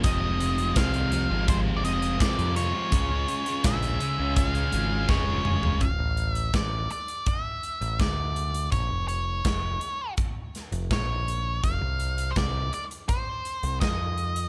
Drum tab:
HH |x-xxxxx-x-xxxxx-|x-xxxxx-xxx-----|x-xxx-xxx-xxx-xx|x-x-x-x-x-xxx-x-|
SD |----o-------o---|----o-------o---|----o-------o---|----o-----o-o---|
T2 |----------------|--------------o-|----------------|----------------|
FT |----------------|---------------o|----------------|----------------|
BD |o---o---o---o---|o---o---o---o---|o---o---o---o---|o---o---o---o---|

HH |x-xxx-xxx-xxx-xx|
SD |----o-------o---|
T2 |----------------|
FT |----------------|
BD |o---o---o---o---|